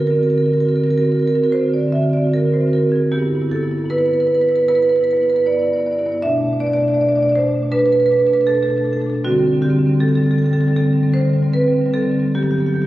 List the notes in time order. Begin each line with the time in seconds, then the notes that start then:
0.00 D3 C4 F#4 A#4
0.07 D3 C4 F#4 A#4
0.15 F#4 A#4
0.19 D3 C4 F#4
0.23 C4 A#4
0.29 D3 F#4 A#4
0.35 D3 C4 F#4 A#4
0.42 C4 F#4 A#4
0.47 D3 C4 F#4
0.54 D3 A#4
0.58 C4 F#4 A#4
0.65 D3 C4 F#4 A#4
0.72 D3 F#4 A#4
0.77 C4 F#4
0.83 D3 C4 F#4 A#4
0.90 D3 C4 F#4 A#4
0.98 D3 F#4 A#4
1.02 C4 A#4
1.08 D3 C4 F#4
1.12 F#4 A#4
1.17 D3 C4 A#4
1.22 D3 C4 F#4
1.27 F#4 A#4
1.34 D3 C4 F#4 A#4
1.42 D3 C4 F#4 A#4
1.51 D3 C4 F#4 C5
1.59 D3 C4 F#4
1.66 D3 C4 F#4
1.74 F#4 D5
1.78 D3 C4 F#4
1.86 D3 C4 F#4
1.92 C4 F#4 E5
1.97 D3
2.02 D3 C4 F#4
2.10 D3 C4 F#4 D5
2.17 C4 F#4
2.21 D3 F#4
2.27 D3 C4
2.32 C4 F#4 A#4
2.38 D3 F#4
2.44 D3 C4 F#4
2.52 C4 F#4 C5
2.57 D3 F#4
2.61 C4
2.66 D3 C4 F#4
2.73 D3 F#4 A#4
2.78 D3 C4
2.83 C4 F#4
2.90 D3 F#4 G#4
2.94 C4 F#4
3.00 D3 C4 F#4
3.12 G2 B3 E4 G4
3.19 G2 B3 E4
3.27 B3 E4
3.33 G2 B3 E4
3.42 G2 B3 E4
3.49 G2 B3 E4 A4
3.56 E4
3.61 G2 B3 E4
3.70 G2 B3 E4
3.78 B3 E4
3.84 G2 E4
3.90 G2 B3 E4 B4
3.98 G2 B3 E4 B4
4.05 B3 E4 B4
4.10 G2 E4 B4
4.15 B3
4.20 G2 B3 E4 B4
4.27 B3 E4 B4
4.33 G2 E4 B4
4.39 B3 B4
4.43 G2 B3 E4
4.49 E4 B4
4.55 G2 B3 E4 B4
4.68 G2 B3 E4 B4
4.75 B3 E4 B4
4.79 G2 B4
4.84 B3 E4
4.89 G2 E4 B4
4.94 B3 B4
5.00 G2 B3 E4 B4
5.08 B3 E4 B4
5.13 G2 E4
5.17 B3 B4
5.22 G2 E4 B4
5.29 B3 E4 B4
5.34 G2 E4 B4
5.38 B3
5.46 G2 B3 E4 D5
5.52 G2 B3 E4 D5
5.59 B3 E4 D5
5.66 G2 B3 E4 D5
5.73 G2 B3 E4 D5
5.80 B3 E4 D5
5.86 G2 D5
5.91 B3 E4 D5
5.97 G2 B3 E4 D5
6.06 G2 B3 E4 D5
6.12 B3 E4 D5
6.22 B2 A3 D4 E5
6.30 B2 A3 D4
6.38 A3 D4
6.43 B2 D4
6.49 B2 A3
6.53 D4
6.57 B2 A3 D4 D5
6.66 A3 D4 D5
6.72 B2 A3 D4 D5
6.80 B2 D4 D5
6.85 A3 D5
6.90 B2 A3 D4 D5
7.01 B2 A3 D4 D5
7.09 B2 A3 D4 D5
7.16 A3 D4 D5
7.22 B2 D4 D5
7.27 A3 D5
7.32 B2 A3 D4 C5
7.39 B2 A3 D4
7.48 A3 D4
7.52 B2 D4
7.59 B2 A3 D4
7.71 B2 A3 D4 B4
7.79 B2 A3 D4 B4
7.86 B2 D4 B4
7.90 A3 B4
7.95 B2 D4
7.99 A3 D4 B4
8.06 B2 A3 B4
8.11 D4 B4
8.17 B2 A3 D4 B4
8.26 B2 A3 D4 B4
8.33 B2 A3 D4 B4
8.41 D4 B4
8.47 B2 A3 D4 A4
8.55 B2 A3 D4 A4
8.62 A3 D4 A4
8.68 B2 D4 A4
8.72 A3
8.76 B2 D4 A4
8.81 A3 D4
8.85 B2 A3 A4
8.92 D4 A4
8.96 B2 A3 D4
9.01 A4
9.06 B2 A3 D4 A4
9.14 B2 A3 D4
9.24 D3 G3 C4 F#4
9.31 D3 G3 C4
9.38 G3 C4
9.43 D3 C4
9.48 G3
9.52 D3 C4
9.57 G3
9.61 D3 C4 G4
9.66 G3
9.70 D3 G3 C4
9.79 D3 G3 C4
9.86 D3 G3 C4
9.94 C4
10.00 D3 G3 C4 A4
10.08 D3 G3 C4 A4
10.15 D3 G3 C4 A4
10.24 D3 G3 C4 A4
10.31 G3 C4 A4
10.35 D3 A4
10.42 D3 G3 C4 A4
10.50 D3 G3 C4 A4
10.59 G3 C4 A4
10.63 D3 G3
10.68 C4 A4
10.73 D3 G3 C4 A4
10.84 D3 G3 C4
10.93 D3 G3 C4
11.01 D3 G3 C4
11.09 G3 C4
11.13 D3 G3 C5
11.20 D3 C4
11.25 G3 C4
11.32 D3 G3 C4
11.42 D3 G3 C4
11.50 D3 G3 C4 B4
11.59 D3 G3 C4
11.68 G3 C4
11.72 D3 C4
11.78 D3 G3
11.86 G3 C4
11.91 D3 G3 C4 A4
12.01 D3 G3 C4
12.10 D3 G3 C4
12.19 D3 G3 C4
12.35 G2 F#3 B3 G4
12.43 G2 F#3 B3 G4
12.51 G2 F#3 B3 G4
12.59 F#3 B3 G4
12.66 G2 F#3 B3 G4
12.74 G2 F#3 B3 G4
12.82 G4